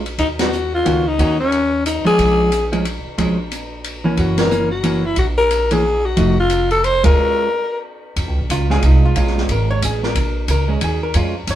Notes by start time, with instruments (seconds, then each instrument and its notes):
Already playing: upright bass A#1
0.06 ride
0.18 upright bass D#2, alto saxophone D#4, kick, ride
0.39 alto saxophone F#4, snare, ride
0.53 hi-hat pedal
0.75 alto saxophone F4
0.85 upright bass C#2, hollow-body jazz guitar D#3 A#3 C#4 F#4, ride
1.08 alto saxophone D#4
1.19 upright bass D#2, hollow-body jazz guitar D#3 A#3 C#4 F#4, kick, ride
1.40 alto saxophone C#4
1.52 ride
1.86 alto saxophone D#4, hi-hat pedal, ride
2.05 hollow-body jazz guitar F3 G#3 C#4, alto saxophone G#4, muted upright bass stroke, ride
2.18 upright bass A#1, kick, ride
2.52 hi-hat pedal, ride
2.72 hollow-body jazz guitar F3 G#3 C#4, ride
2.85 ride
3.05 muted upright bass stroke
3.18 upright bass A#1, hollow-body jazz guitar F3 G#3 C#4, kick, ride
3.52 hi-hat pedal, ride
3.84 ride
4.04 hollow-body jazz guitar E3 A#3 C#4
4.17 upright bass F#1, alto saxophone F#4, kick, ride
4.38 alto saxophone A#4, snare, ride
4.50 hollow-body jazz guitar E3 A#3 C#4, hi-hat pedal
4.71 alto saxophone F#4
4.83 hollow-body jazz guitar E3 A#3 C#4, ride
5.06 alto saxophone E4
5.16 upright bass A#1, alto saxophone F#4, kick, ride
5.38 alto saxophone A#4
5.51 hi-hat pedal, ride
5.71 hollow-body jazz guitar E3 A#3 C#4, alto saxophone G#4, ride
6.06 alto saxophone F#4
6.17 upright bass F1, hollow-body jazz guitar F3 A3 D#4 F#4, kick, ride
6.40 alto saxophone F4
6.50 hi-hat pedal, ride
6.71 alto saxophone A4, ride
6.84 alto saxophone C5, ride
7.04 hollow-body jazz guitar G#3 C#4 F4, alto saxophone A#4, kick, ride
8.16 upright bass F2, kick, ride
8.27 upright bass C#2
8.39 upright bass A#1
8.50 upright bass C#2, hollow-body jazz guitar F4, kick, hi-hat pedal, ride
8.70 hollow-body jazz guitar G#3 C#4 F4 G#4, snare
8.82 upright bass C2, hollow-body jazz guitar D#4, kick, ride
9.05 hollow-body jazz guitar F4
9.16 upright bass A#1, hollow-body jazz guitar G#3 C#4 F4, kick, ride
9.27 snare
9.38 snare
9.49 upright bass G#1, hollow-body jazz guitar A#4, kick, ride
9.71 hollow-body jazz guitar C#5
9.82 upright bass A1, hollow-body jazz guitar G#4, kick, hi-hat pedal, ride
10.03 hollow-body jazz guitar A#4, snare
10.15 upright bass A#1, kick, ride
10.48 upright bass C#2, hollow-body jazz guitar A#4, kick, hi-hat pedal, ride
10.68 hollow-body jazz guitar G#3 C#4
10.81 upright bass D#2, hollow-body jazz guitar G#4, kick, ride
11.03 hollow-body jazz guitar A#4
11.14 upright bass F2, hollow-body jazz guitar G#3 C#4 F4, kick, ride
11.47 upright bass F#2, hollow-body jazz guitar C#5, kick, hi-hat pedal, ride